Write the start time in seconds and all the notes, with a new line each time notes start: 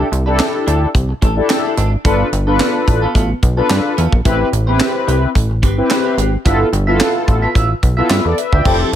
Already playing: E4 A4
0.12 C2, muted clean electric guitar stroke, closed hi-hat
0.26 D4 E4 G4 A4 B4
0.39 muted clean electric guitar stroke, snare, clap, closed hi-hat
0.54 muted clean electric guitar stroke
0.67 D2 D4 E4 A4, closed hi-hat
0.81 muted clean electric guitar stroke
0.95 C2, kick, closed hi-hat
1.09 muted clean electric guitar stroke
1.22 A1 D4 E4 A4, kick, closed hi-hat
1.36 D4 E4 G4 A4, muted clean electric guitar stroke
1.50 muted clean electric guitar stroke, snare, clap, closed hi-hat
1.64 D4 E4 A4
1.77 G#1 D4 E4 A4, closed hi-hat
1.92 muted clean electric guitar stroke
2.04 G1 B3 D4 F4 A4 B4, kick, closed hi-hat
2.20 muted clean electric guitar stroke
2.32 G1, muted clean electric guitar stroke, closed hi-hat
2.47 B3 D4 F4 A4 B4
2.60 B3 F4 B4, snare, clap, closed hi-hat
2.74 muted clean electric guitar stroke
2.88 A1, muted clean electric guitar stroke, kick, closed hi-hat
3.02 B3 F4 A4
3.15 A1 B3 F4 A4, kick, closed hi-hat
3.30 muted clean electric guitar stroke
3.43 B1, muted clean electric guitar stroke, kick, closed hi-hat
3.57 B3 D4 F4 A4 B4
3.70 G2, snare, clap, closed hi-hat
3.85 muted clean electric guitar stroke
3.97 E2 B3 F4 A4, closed hi-hat
4.12 A#1, muted clean electric guitar stroke, kick
4.25 A1 C4 E4 G4 B4, kick, closed hi-hat
4.53 A1, muted clean electric guitar stroke, closed hi-hat
4.67 B3 C4 E4 G4 B4 C5
4.74 C4
4.80 muted clean electric guitar stroke, snare, clap, closed hi-hat
4.95 muted clean electric guitar stroke
5.07 C2 C4 G4 B4, closed hi-hat
5.22 muted clean electric guitar stroke
5.35 A1, kick, closed hi-hat
5.50 muted clean electric guitar stroke
5.62 G1 C4 G4 B4, kick, closed hi-hat
5.77 C4 E4 G4 B4, muted clean electric guitar stroke
5.90 muted clean electric guitar stroke, snare, clap, closed hi-hat
6.05 C4 G4 B4
6.17 G#1 C4 G4 B4, closed hi-hat
6.32 muted clean electric guitar stroke
6.45 G1 B3 E4 F4 A4 B4 E5, kick, closed hi-hat
6.60 muted clean electric guitar stroke
6.73 G1, muted clean electric guitar stroke, closed hi-hat
6.87 B3 E4 F4 A4 B4 E5
7.00 F4 B4 F5, snare, clap, closed hi-hat
7.15 muted clean electric guitar stroke
7.28 A1, muted clean electric guitar stroke, kick, closed hi-hat
7.42 F4 B4 E5
7.55 A1 F4 B4 E5, kick, closed hi-hat
7.70 muted clean electric guitar stroke
7.82 B1, muted clean electric guitar stroke, kick, closed hi-hat
7.97 B3 E4 F4 A4 B4 E5
8.10 G2 F4 B4 E5, snare, clap, closed hi-hat
8.25 E2 A4 D5, muted clean electric guitar stroke
8.38 B4 E5, muted clean electric guitar stroke, closed hi-hat
8.52 D2 F4 B4 D5 E5 G5, kick
8.65 F1 F3 C4 E4 G4 A4, kick, crash